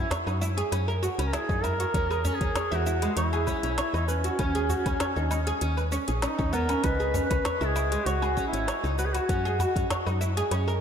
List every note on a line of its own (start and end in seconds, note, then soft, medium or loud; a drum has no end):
0.00 0.11 E4 loud
0.11 0.26 C#5 medium
0.11 snare loud
0.11 closed hi-hat medium
0.11 udu loud
0.11 shaker soft
0.27 0.63 F#2 medium
0.27 0.41 D#4 medium
0.27 low woodblock medium
0.27 shaker soft
0.41 0.51 E4 medium
0.41 shaker medium
0.57 0.71 G#4 loud
0.57 closed hi-hat soft
0.57 shaker soft
0.72 1.09 F#2 medium
0.72 0.87 C#4 medium
0.72 closed hi-hat medium
0.72 low woodblock medium
0.72 shaker soft
0.88 0.96 A#4 medium
0.88 shaker soft
1.03 1.18 F#4 medium
1.03 shaker medium
1.19 1.37 C#2 medium
1.19 1.32 C#4 medium
1.19 closed hi-hat soft
1.19 low woodblock medium
1.19 shaker soft
1.27 1.35 A#4 medium
1.33 1.48 E4 medium
1.33 1.65 G#4 loud
1.33 snare loud
1.33 closed hi-hat medium
1.33 shaker soft
1.49 1.85 F#2 medium
1.49 1.63 D#4 medium
1.49 kick loud
1.49 shaker soft
1.63 1.73 E4 loud
1.63 2.36 A#4 loud
1.63 udu medium
1.63 low woodblock medium
1.63 shaker medium
1.80 1.94 F#4 medium
1.80 closed hi-hat soft
1.80 shaker soft
1.94 2.31 E2 medium
1.94 2.10 C#4 medium
1.94 kick loud
1.94 closed hi-hat soft
1.94 shaker soft
2.11 2.24 G#4 medium
2.11 low woodblock medium
2.11 shaker soft
2.25 2.40 C#4 loud
2.25 udu medium
2.25 shaker medium
2.35 2.77 G#4 loud
2.41 2.50 E2 medium
2.41 2.55 C#4 medium
2.41 kick loud
2.41 closed hi-hat soft
2.41 shaker soft
2.55 2.71 C#5 medium
2.55 snare loud
2.55 closed hi-hat soft
2.55 udu medium
2.55 low woodblock medium
2.55 shaker soft
2.72 3.08 E2 medium
2.72 2.85 E4 loud
2.72 3.15 F#4 medium
2.72 shaker soft
2.86 3.01 E4 medium
2.86 shaker medium
3.02 3.15 G#3 medium
3.02 closed hi-hat soft
3.02 low woodblock medium
3.02 shaker soft
3.16 3.53 E2 medium
3.16 4.04 E4 loud
3.16 3.31 C#5 medium
3.16 closed hi-hat medium
3.16 shaker soft
3.33 3.47 G#4 medium
3.33 shaker soft
3.47 3.62 C#4 medium
3.47 kick medium
3.47 low woodblock medium
3.47 shaker medium
3.63 3.81 B1 medium
3.63 3.77 C#4 medium
3.63 closed hi-hat soft
3.63 shaker soft
3.78 3.93 C#5 medium
3.78 snare loud
3.78 closed hi-hat medium
3.78 shaker soft
3.94 4.30 E2 medium
3.94 4.08 D#4 medium
3.94 low woodblock medium
3.94 shaker soft
4.07 5.88 C#4 medium
4.07 4.23 B4 medium
4.07 shaker medium
4.24 4.38 F#4 medium
4.24 closed hi-hat soft
4.24 shaker soft
4.39 4.76 D#2 loud
4.39 4.54 C#4 medium
4.39 kick loud
4.39 closed hi-hat soft
4.39 low woodblock medium
4.39 shaker soft
4.55 4.69 G#4 medium
4.55 closed hi-hat soft
4.55 shaker soft
4.69 4.85 F#4 medium
4.69 udu medium
4.69 shaker medium
4.86 4.95 D#2 medium
4.86 5.00 C#4 medium
4.86 kick loud
4.86 closed hi-hat soft
4.86 low woodblock medium
4.86 shaker soft
5.00 5.15 C#5 medium
5.00 snare loud
5.00 closed hi-hat medium
5.00 udu medium
5.00 shaker soft
5.16 5.53 D#2 medium
5.16 5.29 D#4 medium
5.16 shaker soft
5.31 5.40 D#4 medium
5.31 low woodblock medium
5.31 shaker medium
5.47 5.61 G#4 loud
5.47 closed hi-hat soft
5.47 shaker soft
5.61 5.98 D#2 medium
5.61 5.77 C#4 medium
5.61 closed hi-hat soft
5.61 shaker soft
5.77 5.86 B4 medium
5.77 low woodblock medium
5.77 shaker soft
5.92 6.07 C#4 medium
5.92 shaker medium
6.08 6.27 A#1 medium
6.08 6.22 G#4 medium
6.08 closed hi-hat soft
6.08 shaker soft
6.22 6.37 C#4 medium
6.22 6.55 D#4 medium
6.22 snare medium
6.22 closed hi-hat soft
6.22 low woodblock medium
6.22 shaker soft
6.39 6.75 D#2 medium
6.39 6.53 C#4 medium
6.39 kick loud
6.39 shaker soft
6.53 6.68 B3 loud
6.53 6.86 A#4 loud
6.53 udu medium
6.53 shaker medium
6.69 6.82 C#4 loud
6.69 closed hi-hat soft
6.69 low woodblock medium
6.69 shaker soft
6.84 7.21 C#2 medium
6.84 6.99 C#4 medium
6.84 7.24 B4 loud
6.84 10.81 D#5 medium
6.84 kick loud
6.84 closed hi-hat soft
6.84 low woodblock medium
6.84 shaker soft
7.00 7.14 G#4 medium
7.00 shaker soft
7.14 7.29 C#4 medium
7.14 udu medium
7.14 shaker medium
7.25 7.67 B4 loud
7.30 7.40 C#2 medium
7.30 7.44 C#4 medium
7.30 kick loud
7.30 closed hi-hat soft
7.30 low woodblock medium
7.30 shaker soft
7.45 7.60 C#5 medium
7.45 snare loud
7.45 closed hi-hat medium
7.45 udu medium
7.45 shaker soft
7.61 7.97 C#2 medium
7.61 7.74 E4 loud
7.61 shaker soft
7.66 8.08 G#4 medium
7.76 7.90 E4 medium
7.76 low woodblock medium
7.76 shaker medium
7.92 8.05 G#3 medium
7.92 closed hi-hat soft
7.92 shaker soft
8.06 8.43 C#2 medium
8.06 8.47 F#4 loud
8.06 8.21 C#5 medium
8.06 closed hi-hat medium
8.06 shaker soft
8.22 8.36 G#4 medium
8.22 low woodblock medium
8.22 shaker soft
8.37 8.52 C#4 medium
8.37 kick medium
8.37 shaker medium
8.47 8.85 E4 medium
8.53 8.71 G#1 medium
8.53 8.67 C#4 medium
8.53 closed hi-hat soft
8.53 shaker soft
8.68 8.83 C#5 medium
8.68 snare medium
8.68 closed hi-hat medium
8.68 low woodblock medium
8.68 shaker soft
8.84 9.20 C#2 medium
8.84 8.98 D#4 medium
8.84 shaker soft
8.98 9.07 F#4 medium
8.98 9.13 B4 medium
8.98 shaker medium
9.05 9.14 G#4 medium
9.13 9.90 F#4 medium
9.13 9.28 F#4 medium
9.13 closed hi-hat soft
9.13 low woodblock medium
9.13 shaker soft
9.29 9.66 F#2 loud
9.29 9.44 C#4 medium
9.29 kick loud
9.29 closed hi-hat medium
9.29 shaker soft
9.45 9.59 G#4 loud
9.45 shaker soft
9.59 9.75 F#4 loud
9.59 udu medium
9.59 low woodblock medium
9.59 shaker medium
9.76 9.85 F#2 medium
9.76 9.90 C#4 medium
9.76 kick loud
9.76 closed hi-hat soft
9.76 shaker soft
9.90 10.06 C#5 medium
9.90 snare loud
9.90 closed hi-hat medium
9.90 udu medium
9.90 shaker soft
10.07 10.43 F#2 medium
10.07 10.20 D#4 medium
10.07 low woodblock medium
10.07 shaker soft
10.21 10.30 E4 medium
10.21 shaker medium
10.37 10.51 G#4 loud
10.37 closed hi-hat soft
10.37 shaker soft
10.51 10.81 F#2 medium
10.51 10.67 C#4 medium
10.51 closed hi-hat medium
10.51 low woodblock medium
10.51 shaker soft
10.68 10.76 A#4 medium
10.68 shaker soft